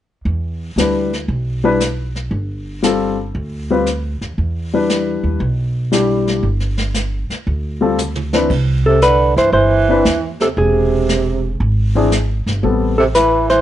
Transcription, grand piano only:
0.78 1.09 G3 soft
0.78 1.09 D4 soft
0.78 1.10 E4 soft
0.78 1.10 B4 medium
1.64 1.79 G3 medium
1.64 1.79 D4 medium
1.64 1.79 E4 medium
1.64 1.79 B4 medium
2.82 3.15 G3 medium
2.82 3.15 C4 soft
2.82 3.15 F4 soft
2.82 3.15 A4 medium
3.70 3.85 G3 medium
3.70 3.85 C4 soft
3.70 3.86 F4 soft
3.70 3.86 B4 medium
4.73 5.38 G3 soft
4.73 5.38 D4 soft
4.73 5.38 E4 soft
4.73 5.39 B4 medium
5.92 6.44 G3 soft
5.92 6.44 D4 soft
5.92 6.44 E4 soft
5.92 6.44 G4 medium
7.81 7.96 G3 soft
7.81 7.96 C4 soft
7.81 7.97 F4 soft
7.81 7.97 A4 medium
8.33 8.48 E3 soft
8.33 8.48 C4 soft
8.33 8.48 D4 soft
8.33 8.49 B4 medium
9.89 10.03 E3 medium
9.89 10.03 C4 soft
9.89 10.04 D4 soft
9.89 10.04 B4 medium
11.95 12.10 E3 medium
11.95 12.10 C4 medium
11.95 12.10 D4 medium
11.95 12.10 G#4 medium
12.63 12.94 G3 soft
12.63 12.94 B3 soft
12.63 12.95 C4 soft
12.63 12.95 A4 medium

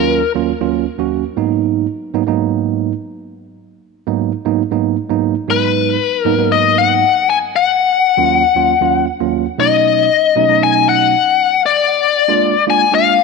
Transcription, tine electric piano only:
0.00 0.20 D#2 medium
0.00 0.20 F#3 medium
0.00 0.21 A#3 medium
0.00 0.21 C#4 medium
0.00 0.21 F4 loud
0.35 0.51 D#2 medium
0.35 0.51 F#3 medium
0.35 0.51 A#3 medium
0.35 0.51 C#4 medium
0.35 0.51 F4 medium
0.60 0.84 D#2 medium
0.60 0.84 F#3 medium
0.60 0.85 A#3 medium
0.60 0.85 C#4 medium
0.60 0.85 F4 medium
0.98 1.23 D#2 medium
0.98 1.23 F#3 medium
0.98 1.23 A#3 medium
0.98 1.23 C#4 medium
0.98 1.23 F#4 medium
1.37 1.85 G#2 medium
1.37 1.85 F#3 medium
1.37 1.86 A#3 medium
1.37 1.86 B3 medium
1.37 1.86 D#4 medium
2.13 2.22 G#2 medium
2.13 2.22 F#3 medium
2.13 2.22 A#3 medium
2.13 2.22 B3 medium
2.13 2.22 D#4 loud
2.27 2.92 G#2 medium
2.27 2.92 F#3 medium
2.27 2.92 A#3 medium
2.27 2.92 B3 medium
2.27 2.92 D#4 loud
4.07 4.31 G#2 medium
4.07 4.31 F#3 medium
4.07 4.31 A#3 medium
4.07 4.31 B3 medium
4.07 4.32 D#4 medium
4.45 4.62 G#2 medium
4.45 4.62 F#3 medium
4.45 4.62 A#3 medium
4.45 4.62 B3 medium
4.45 4.62 D#4 medium
4.71 4.95 G#2 medium
4.71 4.95 F#3 medium
4.71 4.96 A#3 medium
4.71 4.96 B3 medium
4.71 4.96 D#4 medium
5.09 5.34 G#2 medium
5.09 5.34 F#3 medium
5.09 5.34 A#3 medium
5.09 5.34 B3 medium
5.09 5.34 D#4 loud
5.48 5.97 G#2 medium
5.48 5.97 F#3 medium
5.48 5.97 G#3 medium
5.48 5.97 B3 medium
5.48 5.97 D#4 medium
6.25 6.33 G#2 loud
6.25 6.33 F#3 medium
6.25 6.33 A#3 medium
6.25 6.34 B3 medium
6.25 6.34 D#4 loud
6.38 7.03 G#2 medium
6.38 7.03 F#3 medium
6.38 7.03 A#3 medium
6.38 7.03 B3 medium
6.38 7.03 D#4 medium
8.17 8.42 D#2 medium
8.17 8.42 F#3 medium
8.17 8.42 A#3 medium
8.17 8.42 C#4 medium
8.17 8.42 F4 medium
8.55 8.72 D#2 medium
8.55 8.72 F#3 medium
8.55 8.73 A#3 medium
8.55 8.73 C#4 medium
8.55 8.73 F4 loud
8.81 9.06 D#2 medium
8.81 9.06 F#3 medium
8.81 9.06 A#3 medium
8.81 9.06 C#4 medium
8.81 9.06 F4 medium
9.20 9.45 D#2 medium
9.20 9.45 F#3 medium
9.20 9.45 A#3 medium
9.20 9.45 C#4 medium
9.20 9.45 F4 medium
9.58 10.07 B2 medium
9.58 10.07 F#3 medium
9.58 10.08 A3 medium
9.58 10.08 C#4 medium
9.58 10.08 D#4 medium
10.36 10.44 B2 medium
10.36 10.44 F#3 medium
10.36 10.44 A3 medium
10.36 10.45 C#4 medium
10.36 10.45 D#4 medium
10.49 11.14 B2 medium
10.49 11.14 F#3 medium
10.49 11.14 A3 medium
10.49 11.14 C#4 medium
10.49 11.14 D#4 medium
12.28 12.53 G#3 medium
12.28 12.53 A#3 medium
12.28 12.53 D4 medium
12.28 12.53 F4 loud
12.67 12.84 G#3 medium
12.67 12.84 A#3 medium
12.67 12.84 D4 medium
12.67 12.84 F4 medium
12.92 13.17 G#3 medium
12.92 13.17 A#3 medium
12.92 13.17 D4 medium
12.92 13.18 F4 medium

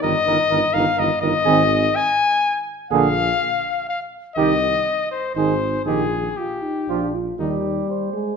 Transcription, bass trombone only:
0.03 0.14 G1 medium
0.27 0.38 G1 medium
0.50 0.61 G1 medium
0.75 0.85 G1 medium
0.98 1.09 G1 medium
1.22 1.33 G1 medium
1.46 1.87 G#1 medium
2.91 3.32 A#1 medium
4.37 4.78 C2 medium
5.36 5.78 G#1 medium
5.86 6.29 A#1 medium
6.88 7.31 A#1 soft
7.39 7.81 D#2 soft

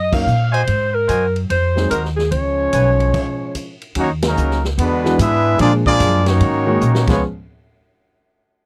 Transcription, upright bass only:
0.00 0.26 F#2 medium
0.26 0.66 A#2 medium
0.68 1.08 G#2 medium
1.09 1.48 F#2 loud
1.49 1.89 F2 medium
1.91 2.31 D#2 medium
2.31 2.71 C#2 medium
2.73 3.12 B1 medium
3.96 4.35 D#2 medium
4.37 4.76 C#2 medium
4.78 5.17 E2 medium
5.19 5.58 G#2 loud
5.59 5.99 A#2 medium
6.00 6.39 F#2 loud
6.40 6.80 G#2 medium
6.82 7.07 A#2 medium
7.07 7.21 C#2 medium

